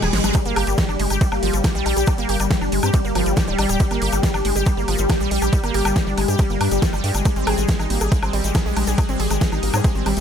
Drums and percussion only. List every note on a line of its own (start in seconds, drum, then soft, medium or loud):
0.02 snare medium
0.02 closed hi-hat soft
0.02 high woodblock soft
0.02 shaker soft
0.13 snare loud
0.13 open hi-hat medium
0.24 snare medium
0.24 closed hi-hat medium
0.24 high woodblock soft
0.24 shaker medium
0.34 kick loud
0.34 closed hi-hat medium
0.34 ride medium
0.34 high woodblock soft
0.34 shaker medium
0.45 closed hi-hat soft
0.45 shaker soft
0.56 open hi-hat loud
0.56 high woodblock medium
0.67 closed hi-hat medium
0.67 shaker medium
0.78 kick loud
0.78 snare loud
0.78 closed hi-hat medium
0.78 ride medium
0.78 shaker medium
0.89 high woodblock soft
0.89 shaker soft
1.00 open hi-hat loud
1.10 closed hi-hat medium
1.10 high woodblock soft
1.10 shaker medium
1.21 kick loud
1.21 closed hi-hat medium
1.21 ride medium
1.21 shaker medium
1.32 high woodblock medium
1.32 shaker soft
1.43 open hi-hat loud
1.53 closed hi-hat medium
1.53 shaker medium
1.64 kick loud
1.64 snare loud
1.64 closed hi-hat medium
1.64 ride medium
1.64 high woodblock soft
1.64 shaker medium
1.75 shaker soft
1.86 open hi-hat medium
1.86 high woodblock soft
1.97 closed hi-hat medium
1.97 shaker medium
2.06 kick loud
2.06 closed hi-hat medium
2.06 ride medium
2.06 high woodblock medium
2.06 shaker medium
2.18 closed hi-hat soft
2.18 shaker soft
2.29 open hi-hat loud
2.40 closed hi-hat medium
2.40 high woodblock soft
2.40 shaker medium
2.51 kick loud
2.51 snare loud
2.51 closed hi-hat medium
2.51 ride medium
2.51 shaker medium
2.61 high woodblock soft
2.61 shaker soft
2.72 open hi-hat loud
2.83 closed hi-hat soft
2.83 high woodblock medium
2.83 shaker medium
2.93 kick loud
2.93 closed hi-hat medium
2.93 ride medium
2.93 shaker medium
3.05 shaker soft
3.15 open hi-hat loud
3.15 high woodblock soft
3.26 closed hi-hat medium
3.26 shaker medium
3.37 kick loud
3.37 snare loud
3.37 closed hi-hat medium
3.37 ride medium
3.37 high woodblock soft
3.37 shaker medium
3.47 shaker soft
3.59 open hi-hat loud
3.59 high woodblock medium
3.69 closed hi-hat medium
3.69 shaker medium
3.80 kick loud
3.80 closed hi-hat medium
3.80 ride medium
3.80 shaker medium
3.91 closed hi-hat soft
3.91 high woodblock soft
3.91 shaker soft
4.02 open hi-hat loud
4.12 closed hi-hat medium
4.12 high woodblock soft
4.12 shaker medium
4.23 kick loud
4.23 snare loud
4.23 closed hi-hat medium
4.23 ride medium
4.23 shaker medium
4.34 high woodblock medium
4.34 shaker soft
4.45 open hi-hat loud
4.56 closed hi-hat soft
4.56 shaker medium
4.66 kick loud
4.66 closed hi-hat medium
4.66 ride medium
4.66 high woodblock soft
4.66 shaker medium
4.78 shaker soft
4.88 open hi-hat loud
4.88 high woodblock soft
4.98 closed hi-hat medium
4.98 shaker medium
5.09 kick loud
5.09 snare loud
5.09 closed hi-hat medium
5.09 ride medium
5.09 high woodblock medium
5.09 shaker medium
5.21 shaker soft
5.31 open hi-hat loud
5.42 closed hi-hat soft
5.42 high woodblock soft
5.42 shaker medium
5.53 kick loud
5.53 closed hi-hat medium
5.53 ride medium
5.53 shaker medium
5.64 closed hi-hat soft
5.64 high woodblock soft
5.64 shaker soft
5.74 open hi-hat loud
5.85 closed hi-hat medium
5.85 high woodblock medium
5.85 shaker medium
5.96 kick loud
5.96 snare loud
5.96 closed hi-hat medium
5.96 ride medium
5.96 shaker medium
6.07 shaker soft
6.18 open hi-hat loud
6.18 high woodblock soft
6.28 closed hi-hat soft
6.28 shaker medium
6.38 kick loud
6.38 closed hi-hat medium
6.38 ride medium
6.38 high woodblock soft
6.38 shaker medium
6.50 shaker soft
6.61 open hi-hat loud
6.61 high woodblock medium
6.71 closed hi-hat medium
6.71 shaker medium
6.82 kick loud
6.82 snare loud
6.82 closed hi-hat medium
6.82 ride medium
6.82 shaker medium
6.93 high woodblock soft
6.93 shaker soft
7.04 open hi-hat loud
7.14 closed hi-hat soft
7.14 high woodblock soft
7.14 shaker medium
7.25 kick loud
7.25 closed hi-hat medium
7.25 ride medium
7.25 high woodblock soft
7.25 shaker medium
7.36 closed hi-hat soft
7.36 shaker soft
7.47 open hi-hat loud
7.47 high woodblock medium
7.58 closed hi-hat medium
7.58 shaker medium
7.68 kick loud
7.68 snare loud
7.68 closed hi-hat medium
7.68 ride medium
7.68 shaker medium
7.79 high woodblock soft
7.79 shaker soft
7.90 open hi-hat loud
8.01 closed hi-hat soft
8.01 high woodblock soft
8.01 shaker medium
8.12 kick loud
8.12 closed hi-hat medium
8.12 ride medium
8.12 shaker medium
8.23 high woodblock medium
8.23 shaker soft
8.33 open hi-hat loud
8.44 closed hi-hat medium
8.44 shaker medium
8.54 kick loud
8.54 snare loud
8.54 closed hi-hat medium
8.54 ride medium
8.54 high woodblock soft
8.54 shaker medium
8.67 shaker soft
8.77 open hi-hat medium
8.77 high woodblock soft
8.87 closed hi-hat soft
8.87 shaker medium
8.98 kick loud
8.98 closed hi-hat medium
8.98 ride medium
8.98 high woodblock medium
8.98 shaker medium
9.09 closed hi-hat soft
9.09 shaker soft
9.20 open hi-hat loud
9.30 closed hi-hat medium
9.30 high woodblock soft
9.30 shaker medium
9.41 kick loud
9.41 snare loud
9.41 closed hi-hat medium
9.41 ride medium
9.41 shaker medium
9.52 high woodblock soft
9.52 shaker soft
9.63 open hi-hat loud
9.73 closed hi-hat soft
9.73 high woodblock medium
9.73 shaker medium
9.84 kick loud
9.84 closed hi-hat medium
9.84 ride medium
9.84 shaker medium
9.95 shaker soft
10.06 open hi-hat loud
10.06 high woodblock soft
10.17 closed hi-hat medium